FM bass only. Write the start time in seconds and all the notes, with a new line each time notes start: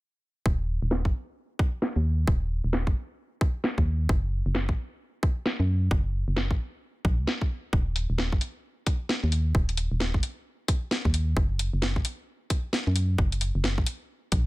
0.46 D#1
0.82 D#1
1.05 G1
1.96 D#2
2.27 D#1
2.64 D#1
2.87 G1
3.78 D#2
4.09 F#1
4.46 F#1
4.69 A#1
5.60 F#2
5.91 F#1
6.28 F#1
6.51 A#1
7.05 A#1
7.19 C#2
7.73 D#1
8.10 D#1
8.32 G1
9.23 D#2
9.55 D#1
9.91 D#1
10.14 G1
11.05 D#2
11.37 F#1
11.73 F#1
11.96 A#1
12.87 F#2
13.18 F#1
13.55 F#1
13.78 A#1
14.32 A#1